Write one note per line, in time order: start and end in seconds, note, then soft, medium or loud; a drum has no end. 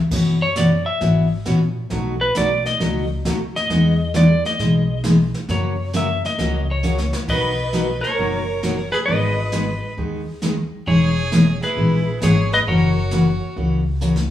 0.11 0.83 F#2 medium
0.11 0.34 B2 medium
0.11 0.34 E3 medium
0.11 0.34 B3 medium
0.11 0.35 C#4 medium
0.11 0.35 F#4 medium
0.11 brush sweep soft
0.11 kick medium
0.11 snare soft
0.11 crash medium
0.42 0.56 C#5 loud
0.56 0.68 B2 medium
0.56 0.68 E3 medium
0.56 0.69 B3 medium
0.56 0.69 C#4 medium
0.56 0.69 F#4 medium
0.56 0.86 D5 medium
0.56 snare medium
0.56 hi-hat pedal medium
0.86 1.28 E5 loud
1.01 1.39 G#1 medium
1.01 1.24 B2 medium
1.01 1.24 E3 medium
1.01 1.24 B3 medium
1.01 1.24 C#4 medium
1.01 1.24 F#4 medium
1.01 brush sweep soft
1.01 snare soft
1.45 1.84 A#1 medium
1.45 1.58 B2 medium
1.45 1.58 E3 medium
1.45 1.58 B3 medium
1.45 1.58 C#4 medium
1.45 1.58 F#4 medium
1.45 snare medium
1.45 hi-hat pedal medium
1.90 2.26 B1 medium
1.90 2.13 B2 medium
1.90 2.13 F#3 medium
1.90 2.14 A3 medium
1.90 2.14 D#4 medium
1.90 2.14 F#4 medium
1.90 brush sweep soft
1.90 snare soft
2.21 2.35 B4 medium
2.35 2.74 B1 medium
2.35 2.48 B2 medium
2.35 2.48 F#3 medium
2.35 2.48 A3 medium
2.35 2.48 D#4 medium
2.35 2.48 F#4 medium
2.35 2.66 D5 medium
2.35 snare medium
2.35 hi-hat pedal medium
2.66 3.08 D#5 medium
2.66 snare soft
2.80 3.18 C#2 medium
2.80 3.03 B2 soft
2.80 3.03 F#3 medium
2.80 3.03 A3 medium
2.80 3.03 D#4 medium
2.80 3.04 F#4 medium
2.80 brush sweep medium
2.80 snare medium
3.25 3.63 D#2 medium
3.25 3.37 B2 medium
3.25 3.37 F#3 medium
3.25 3.37 A3 medium
3.25 3.37 D#4 medium
3.25 3.38 F#4 medium
3.25 snare medium
3.25 hi-hat pedal medium
3.56 4.11 D#5 loud
3.56 snare soft
3.70 4.41 E2 loud
3.70 3.93 E3 medium
3.70 3.93 G#3 medium
3.70 3.93 B3 medium
3.70 3.93 D#4 medium
3.70 3.93 G#4 medium
3.70 brush sweep soft
3.70 snare soft
4.14 4.26 E3 medium
4.14 4.27 G#3 medium
4.14 4.27 B3 medium
4.14 4.27 D#4 medium
4.14 4.27 G#4 medium
4.14 4.45 D5 medium
4.14 snare medium
4.14 hi-hat pedal medium
4.45 5.01 D#5 medium
4.45 snare soft
4.59 5.31 B1 medium
4.59 4.82 E3 medium
4.59 4.82 G#3 medium
4.59 4.82 B3 medium
4.59 4.83 D#4 medium
4.59 4.83 G#4 medium
4.59 brush sweep soft
4.59 snare soft
5.04 5.16 E3 medium
5.04 5.16 G#3 medium
5.04 5.16 B3 medium
5.04 5.16 D#4 medium
5.04 5.16 G#4 medium
5.04 snare medium
5.04 hi-hat pedal medium
5.34 snare soft
5.48 6.20 F#2 medium
5.48 5.72 C#3 medium
5.48 5.72 F#3 medium
5.48 5.72 A#3 medium
5.48 5.72 C#4 medium
5.48 5.72 F#4 medium
5.48 5.91 C#5 medium
5.48 brush sweep soft
5.48 snare medium
5.93 6.06 C#3 medium
5.93 6.06 F#3 medium
5.93 6.06 A#3 medium
5.93 6.06 C#4 medium
5.93 6.06 F#4 medium
5.93 6.25 E5 loud
5.93 snare medium
5.93 hi-hat pedal medium
6.25 6.67 D#5 medium
6.25 snare soft
6.38 7.10 C#2 medium
6.38 6.61 C#3 medium
6.38 6.61 F#3 medium
6.38 6.62 A#3 medium
6.38 6.62 C#4 medium
6.38 6.62 F#4 medium
6.38 brush sweep soft
6.38 snare medium
6.71 7.18 C#5 medium
6.83 6.95 C#3 medium
6.83 6.95 F#3 medium
6.83 6.95 A#3 medium
6.83 6.96 C#4 medium
6.83 6.96 F#4 medium
6.83 hi-hat pedal medium
6.98 snare medium
7.13 snare medium
7.28 8.00 B1 medium
7.28 7.51 B2 medium
7.28 7.52 F#3 medium
7.28 7.52 A#3 medium
7.28 7.52 D#4 medium
7.28 7.52 F#4 medium
7.28 7.99 B4 loud
7.28 8.00 B4 medium
7.28 8.01 D#5 medium
7.28 brush sweep soft
7.28 kick medium
7.28 crash medium
7.73 7.85 B2 medium
7.73 7.85 F#3 medium
7.73 7.86 A#3 medium
7.73 7.86 D#4 medium
7.73 7.86 F#4 medium
7.73 snare medium
7.73 hi-hat pedal soft
8.01 8.89 A#4 medium
8.01 8.88 C#5 loud
8.01 snare soft
8.18 8.90 F#1 medium
8.18 8.41 B2 soft
8.18 8.41 F#3 medium
8.18 8.41 A#3 medium
8.18 8.41 D#4 medium
8.18 8.42 F#4 medium
8.18 brush sweep medium
8.63 8.75 B2 medium
8.63 8.75 F#3 medium
8.63 8.75 A#3 medium
8.63 8.75 D#4 medium
8.63 8.75 F#4 medium
8.63 snare medium
8.63 hi-hat pedal medium
8.92 8.98 G#4 medium
8.92 8.99 G#4 medium
8.92 8.97 B4 medium
8.92 snare soft
9.06 9.80 G#1 medium
9.06 9.30 D#3 medium
9.06 9.31 G#3 medium
9.06 9.31 B3 medium
9.06 9.31 D#4 medium
9.06 9.31 G#4 medium
9.06 9.93 B4 medium
9.06 9.92 D#5 medium
9.06 brush sweep soft
9.52 9.64 D#3 medium
9.52 9.65 G#3 medium
9.52 9.65 B3 medium
9.52 9.65 D#4 medium
9.52 9.65 G#4 medium
9.52 snare medium
9.52 hi-hat pedal medium
9.97 10.69 D#2 medium
9.97 10.20 D#3 medium
9.97 10.21 G#3 medium
9.97 10.21 B3 medium
9.97 10.21 D#4 medium
9.97 10.21 G#4 medium
9.97 brush sweep soft
10.42 10.54 D#3 medium
10.42 10.54 G#3 medium
10.42 10.55 B3 medium
10.42 10.55 D#4 medium
10.42 10.55 G#4 medium
10.42 snare medium
10.42 hi-hat pedal medium
10.87 11.59 E1 medium
10.87 11.10 E3 medium
10.87 11.10 G#3 medium
10.87 11.11 B3 medium
10.87 11.11 D#4 medium
10.87 11.59 G#4 medium
10.87 11.11 G#4 medium
10.87 11.59 C#5 medium
10.87 brush sweep soft
11.32 11.44 E3 medium
11.32 11.44 G#3 medium
11.32 11.44 B3 medium
11.32 11.44 D#4 medium
11.32 11.45 G#4 medium
11.32 snare medium
11.32 hi-hat pedal medium
11.62 12.18 E4 medium
11.62 12.18 G#4 medium
11.62 12.23 B4 medium
11.62 snare soft
11.77 12.15 A#1 medium
11.77 12.00 E3 medium
11.77 12.00 G#3 medium
11.77 12.00 B3 medium
11.77 12.00 D#4 medium
11.77 12.01 G#4 medium
11.77 brush sweep medium
12.21 12.60 G#1 medium
12.21 12.34 E3 medium
12.21 12.34 G#3 medium
12.21 12.34 B3 medium
12.21 12.35 D#4 medium
12.21 12.50 G#4 medium
12.21 12.35 G#4 medium
12.21 12.51 G#4 medium
12.21 12.51 C#5 medium
12.21 snare medium
12.21 hi-hat pedal medium
12.52 12.59 B4 medium
12.52 12.58 B4 medium
12.52 12.59 D#5 loud
12.52 snare soft
12.66 13.39 F#1 medium
12.66 12.90 C#3 medium
12.66 12.90 E3 medium
12.66 12.90 A#3 medium
12.66 12.91 C#4 medium
12.66 13.53 F#4 medium
12.66 12.91 F#4 medium
12.66 13.53 A#4 medium
12.66 13.53 C#5 medium
12.66 brush sweep soft
13.11 13.24 C#3 medium
13.11 13.24 E3 medium
13.11 13.24 A#3 medium
13.11 13.24 C#4 medium
13.11 13.24 F#4 medium
13.11 snare medium
13.11 hi-hat pedal medium
13.56 14.28 C#2 medium
13.56 13.80 C#3 medium
13.56 13.80 E3 soft
13.56 13.80 A#3 medium
13.56 13.80 C#4 medium
13.56 13.80 F#4 medium
13.56 brush sweep medium
14.01 14.13 C#3 medium
14.01 14.13 E3 medium
14.01 14.14 A#3 medium
14.01 14.14 C#4 medium
14.01 14.14 F#4 medium
14.01 hi-hat pedal medium
14.16 snare medium